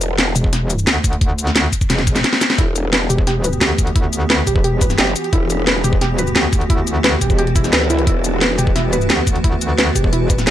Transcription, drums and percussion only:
0.01 closed hi-hat, cabasa
0.18 snare, closed hi-hat
0.36 closed hi-hat, cabasa
0.44 kick
0.53 snare, closed hi-hat
0.70 closed hi-hat, cabasa
0.79 cabasa
0.87 snare, closed hi-hat
1.04 kick, closed hi-hat, cabasa
1.13 closed hi-hat
1.21 kick, closed hi-hat
1.38 closed hi-hat, cabasa
1.47 snare, closed hi-hat
1.56 snare, closed hi-hat, cabasa
1.73 kick, closed hi-hat, cabasa
1.81 kick, cabasa
1.90 snare, closed hi-hat
1.98 snare, closed hi-hat
2.07 kick, closed hi-hat, cabasa
2.16 snare, closed hi-hat, cabasa
2.24 snare, closed hi-hat
2.33 snare
2.41 snare, closed hi-hat, cabasa
2.50 snare, closed hi-hat
2.58 kick, closed hi-hat
2.76 closed hi-hat, cabasa
2.93 snare, closed hi-hat
3.10 closed hi-hat, cabasa
3.18 kick
3.27 snare, closed hi-hat
3.44 closed hi-hat, cabasa
3.53 cabasa
3.61 snare, closed hi-hat
3.78 kick, closed hi-hat, cabasa
3.87 closed hi-hat
3.96 kick, closed hi-hat
4.13 closed hi-hat, cabasa
4.30 snare, closed hi-hat
4.47 kick, closed hi-hat, cabasa
4.56 kick
4.64 closed hi-hat
4.81 kick, closed hi-hat, cabasa
4.90 snare, cabasa
4.98 snare, closed hi-hat
5.07 snare
5.16 closed hi-hat, cabasa
5.24 closed hi-hat
5.33 kick, closed hi-hat
5.50 closed hi-hat, cabasa
5.67 snare, closed hi-hat
5.84 closed hi-hat, cabasa
5.93 kick
6.01 snare, closed hi-hat
6.18 closed hi-hat, cabasa
6.27 cabasa
6.36 snare, closed hi-hat
6.53 kick, closed hi-hat, cabasa
6.61 closed hi-hat
6.70 kick, closed hi-hat
6.87 closed hi-hat, cabasa
7.04 snare, closed hi-hat
7.21 kick, closed hi-hat, cabasa
7.30 kick, cabasa
7.38 closed hi-hat
7.47 closed hi-hat
7.56 kick, closed hi-hat, cabasa
7.64 snare, closed hi-hat, cabasa
7.73 snare, closed hi-hat
7.81 snare
7.90 closed hi-hat, cabasa
7.99 closed hi-hat
8.07 kick, closed hi-hat
8.24 closed hi-hat, cabasa
8.41 snare, closed hi-hat
8.58 closed hi-hat, cabasa
8.67 kick
8.76 snare, closed hi-hat
8.93 closed hi-hat, cabasa
9.01 cabasa
9.10 snare, closed hi-hat
9.27 kick, closed hi-hat, cabasa
9.36 closed hi-hat
9.44 kick, closed hi-hat
9.61 closed hi-hat, cabasa
9.78 snare, closed hi-hat
9.96 kick, closed hi-hat, cabasa
10.04 kick
10.13 closed hi-hat
10.30 kick, closed hi-hat, cabasa
10.38 snare, cabasa
10.47 snare, closed hi-hat

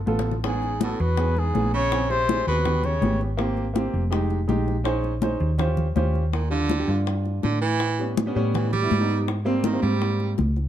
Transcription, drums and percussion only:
0.07 high conga
0.19 low bongo
0.27 high conga
0.31 low bongo
0.44 high bongo, high conga
0.62 high bongo, high conga
0.81 high bongo, high conga
1.00 high conga
1.17 high bongo, high conga
1.36 high bongo, high conga
1.55 high bongo, low bongo, high conga
1.74 high bongo, high conga
1.92 high bongo, high conga
2.10 high bongo, high conga
2.29 high bongo, high conga
2.47 high conga
2.65 high bongo, high conga, low conga
2.84 high bongo, high conga, low conga
3.02 high bongo, low bongo, high conga
3.21 high bongo, high conga
3.39 high bongo, high conga
3.57 high bongo, high conga
3.76 high bongo, high conga
3.94 high conga
4.12 high bongo, high conga
4.30 high bongo, high conga
4.49 high bongo, low bongo, high conga
4.68 high bongo, high conga
4.85 high bongo, high conga
5.04 high bongo, high conga
5.22 high bongo, high conga
5.40 high conga
5.59 high bongo, high conga, low conga
5.77 high bongo, high conga, low conga
5.96 high bongo, low bongo, high conga
6.14 high bongo, high conga
6.33 high bongo, high conga
6.51 high bongo, high conga
6.69 high bongo, high conga
6.89 high conga
7.06 high bongo, high conga
7.25 high bongo, high conga
7.43 high bongo, low bongo, high conga
7.62 high bongo, high conga
7.80 high bongo, high conga
7.99 high bongo, high conga
8.17 high bongo, high conga
8.36 high conga
8.54 high bongo, high conga, low conga
8.73 high bongo, high conga, low conga
8.91 high bongo, low bongo, high conga
9.09 high bongo, high conga
9.28 high bongo, high conga
9.45 high bongo, high conga
9.64 high bongo, high conga
9.82 high conga
10.01 high bongo, high conga
10.20 high bongo, high conga
10.38 high bongo, low bongo, high conga
10.56 high bongo, high conga

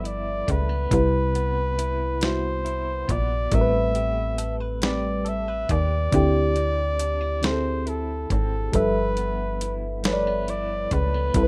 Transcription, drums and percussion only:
0.05 closed hi-hat
0.48 kick, closed hi-hat
0.91 kick, closed hi-hat
1.35 closed hi-hat
1.79 closed hi-hat
2.21 snare, closed hi-hat
2.66 closed hi-hat
3.09 kick, closed hi-hat
3.52 kick, closed hi-hat
3.95 closed hi-hat
4.38 closed hi-hat
4.82 snare, closed hi-hat
5.26 closed hi-hat
5.69 kick, closed hi-hat
6.12 kick, closed hi-hat
6.56 closed hi-hat
6.99 closed hi-hat
7.43 snare, closed hi-hat
7.87 closed hi-hat
8.30 kick, closed hi-hat
8.73 kick, closed hi-hat
9.17 closed hi-hat
9.61 closed hi-hat
10.04 snare, closed hi-hat
10.48 closed hi-hat
10.91 kick, closed hi-hat
11.34 kick, closed hi-hat

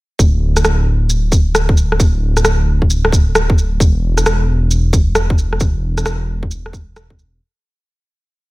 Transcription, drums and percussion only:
0.19 kick, shaker
0.57 cross-stick, shaker
0.65 cross-stick, shaker
1.10 shaker
1.32 kick, shaker
1.55 cross-stick, shaker
1.69 kick
1.77 shaker
1.92 cross-stick
2.00 kick, shaker
2.37 cross-stick, shaker
2.45 cross-stick, shaker
2.82 kick
2.90 shaker
3.05 cross-stick
3.12 kick, shaker
3.35 cross-stick, shaker
3.50 kick
3.58 shaker
3.80 kick, shaker
4.18 cross-stick, shaker
4.26 cross-stick, shaker
4.71 shaker
4.93 kick, shaker
5.15 cross-stick, shaker
5.30 kick
5.38 shaker
5.53 cross-stick
5.60 kick, shaker
5.98 cross-stick, shaker
6.06 cross-stick, shaker
6.43 kick
6.51 shaker
6.66 cross-stick
6.73 kick, shaker
6.96 cross-stick, shaker
7.10 kick
7.19 shaker

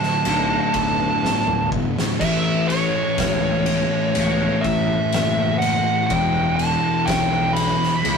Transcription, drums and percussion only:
0.03 snare
0.25 ride
0.74 kick, ride
1.25 snare
1.47 mid tom
1.72 kick
1.99 snare
2.21 kick, crash
2.70 ride
3.18 kick, snare, ride
3.66 ride
4.15 ride
4.64 kick, ride
5.13 snare, ride
5.62 ride
6.10 kick, ride
6.59 ride
7.07 kick, snare, ride
7.56 ride
7.83 snare
8.05 ride

